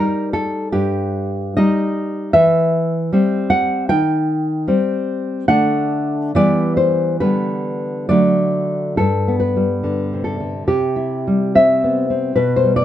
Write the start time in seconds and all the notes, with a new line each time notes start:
Already playing: G3 D#4 A#4
0.33 A4
0.72 G2 G4
1.57 G3 D#4 D#5
2.33 E3 E5
3.13 G3 C4
3.50 F#5
3.89 D#3 G5
4.68 G3 C4
5.48 D3 A3 D4 F#5
6.35 E3 G3 B3 D5
6.77 C5
7.20 D3 G3 B3 B4
8.09 D3 F#3 A3 D5
8.97 G2 A4
9.28 B3
9.40 B4
9.57 G3
9.83 D3
10.13 C3
10.24 A4
10.40 D3
10.68 C3 G4
10.96 E4
11.27 G3
11.55 C4 E5
11.84 B3
12.10 C4
12.36 B2 B4
12.56 C5
12.64 G3
12.76 D5